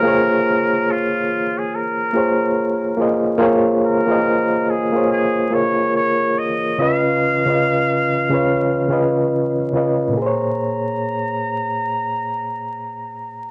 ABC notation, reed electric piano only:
X:1
M:4/4
L:1/16
Q:"Swing 16ths" 1/4=71
K:Bbm
V:1 name="Reed electric piano"
[B,FAcd]6 z4 [B,FAcd]3 z [B,FAce] z | [B,FAcd]2 z [B,FAce]3 z [B,FAcd]2 z [B,FABd]4 z2 | [D,DF_ce]2 z [D,DFce]3 z [D,DFcd]2 z [D,DFce]3 z [D,DFce] z | [B,,B,Acd]16 |]